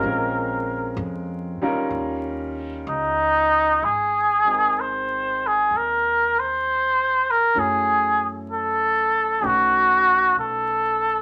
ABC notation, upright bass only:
X:1
M:4/4
L:1/8
Q:"Swing" 1/4=64
K:Ebmix
V:1 name="Upright bass" clef=bass
B,,,2 F,, z E,,2 D,,2 | A,,,4 E,,4 | _G,,4 =B,,,2 B,,,2 |]